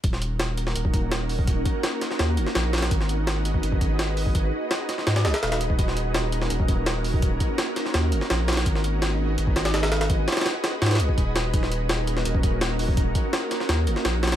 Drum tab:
HH |x---x---x---x---x---x---x---o---|x---x---x---x---x---x---x---xxx-|x---x---x---x---x---x---x---o---|x-------x---x---x-x-x-x-x-x-x---|
SD |--o-----o-----o---------o-------|--------o---o-o-o-----o-o---ooo-|--o-----o---------------o-------|--------o---o-o-o-o-o-o-o-o-----|
BD |o-----------------o-o---------o-|o---o---------------------------|o-------------o---o-o---------o-|o-----------------------------o-|

HH |x---x---x---x---x---x---x---o---|x---x---x---x---x---x---x---xxx-|x---x---x-------x---x-x-x-x-x-x-|x---xxxxx---x---xxxxx---x---x---|
SD |--o-----o-----o---------o-------|--------o---o-o-o-----o-o---ooo-|--o-----o-----------o-o-o-o-o-o-|----ooooo---o---oooo--------o---|
BD |o-----------------o-o---------o-|o---o---------------------------|o-----------------o-------------|o---------------------o-o-------|

HH |x---x---x---x---x---x---x---o---|x---x---x---x---x---x---x---xxx-|
SD |--o-----o-----o---------o-------|--------o---o-o-o-----o-o---ooo-|
BD |o-----------------o-o---------o-|o---o---------------------------|